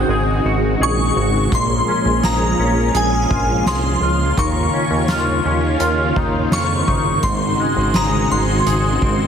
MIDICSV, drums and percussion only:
0, 0, Header, 1, 2, 480
1, 0, Start_track
1, 0, Tempo, 714286
1, 1021, Time_signature, 4, 2, 24, 8
1, 6229, End_track
2, 0, Start_track
2, 0, Title_t, "Drums"
2, 1022, Note_on_c, 9, 36, 104
2, 1023, Note_on_c, 9, 42, 74
2, 1089, Note_off_c, 9, 36, 0
2, 1090, Note_off_c, 9, 42, 0
2, 1502, Note_on_c, 9, 38, 98
2, 1502, Note_on_c, 9, 42, 71
2, 1569, Note_off_c, 9, 38, 0
2, 1569, Note_off_c, 9, 42, 0
2, 1981, Note_on_c, 9, 42, 66
2, 2048, Note_off_c, 9, 42, 0
2, 2222, Note_on_c, 9, 36, 90
2, 2290, Note_off_c, 9, 36, 0
2, 2461, Note_on_c, 9, 38, 99
2, 2465, Note_on_c, 9, 42, 66
2, 2528, Note_off_c, 9, 38, 0
2, 2532, Note_off_c, 9, 42, 0
2, 2940, Note_on_c, 9, 36, 106
2, 2940, Note_on_c, 9, 42, 71
2, 3007, Note_off_c, 9, 36, 0
2, 3007, Note_off_c, 9, 42, 0
2, 3415, Note_on_c, 9, 38, 92
2, 3416, Note_on_c, 9, 42, 71
2, 3483, Note_off_c, 9, 38, 0
2, 3483, Note_off_c, 9, 42, 0
2, 3898, Note_on_c, 9, 42, 69
2, 3965, Note_off_c, 9, 42, 0
2, 4142, Note_on_c, 9, 36, 84
2, 4209, Note_off_c, 9, 36, 0
2, 4378, Note_on_c, 9, 38, 100
2, 4382, Note_on_c, 9, 42, 69
2, 4446, Note_off_c, 9, 38, 0
2, 4449, Note_off_c, 9, 42, 0
2, 4623, Note_on_c, 9, 36, 76
2, 4690, Note_off_c, 9, 36, 0
2, 4858, Note_on_c, 9, 42, 75
2, 4860, Note_on_c, 9, 36, 101
2, 4925, Note_off_c, 9, 42, 0
2, 4928, Note_off_c, 9, 36, 0
2, 5336, Note_on_c, 9, 38, 96
2, 5336, Note_on_c, 9, 42, 72
2, 5404, Note_off_c, 9, 38, 0
2, 5404, Note_off_c, 9, 42, 0
2, 5823, Note_on_c, 9, 42, 70
2, 5891, Note_off_c, 9, 42, 0
2, 6062, Note_on_c, 9, 36, 85
2, 6129, Note_off_c, 9, 36, 0
2, 6229, End_track
0, 0, End_of_file